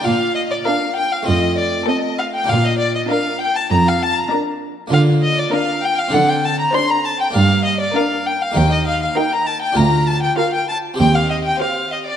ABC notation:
X:1
M:4/4
L:1/16
Q:1/4=99
K:Bb
V:1 name="Violin"
f2 e d f2 g f e2 d2 e2 f g | f e d e f2 g a b f a b z4 | f2 e d f2 g f _g =g a b c' b a g | f2 e d f2 g f g e f f g b a g |
b2 a g f g a2 g f e g f2 e d |]
V:2 name="Violin section"
f2 e d f2 g f e2 d2 e2 f g | f e d e f2 g a b f a b z4 | f2 e d f2 g f _g =g a b c' b a g | f2 e d f2 g f g e f f g b a g |
b2 a g f g a2 g f e g f2 e d |]
V:3 name="Violin section"
z4 B4 z4 A4 | z4 B4 z4 B4 | z4 B4 z4 c4 | z4 B4 z4 B4 |
z4 B4 z4 c4 |]
V:4 name="Viola section"
z4 D4 z4 C4 | z4 D4 z4 D4 | z4 D4 z4 D4 | z4 D4 z4 E4 |
z4 F4 z4 G4 |]
V:5 name="Harpsichord"
[B,DF]8 [A,CF]8 | [B,DF]16 | [B,DF]8 [CDA]8 | [B,DB]8 [B,EB]8 |
[DFB]8 [CGc]8 |]
V:6 name="Harpsichord" clef=bass
B,,4 z4 F,,4 z4 | B,,4 z4 F,,4 z4 | D,4 z4 D,4 z4 | G,,4 z4 E,,4 z4 |
D,,4 z4 E,,4 z4 |]
V:7 name="Cello section" clef=bass
B,,4 z4 F,,4 z4 | B,,4 z4 F,,4 z4 | D,4 z4 D,4 z4 | G,,4 z4 E,,4 z4 |
D,,4 z4 E,,4 z4 |]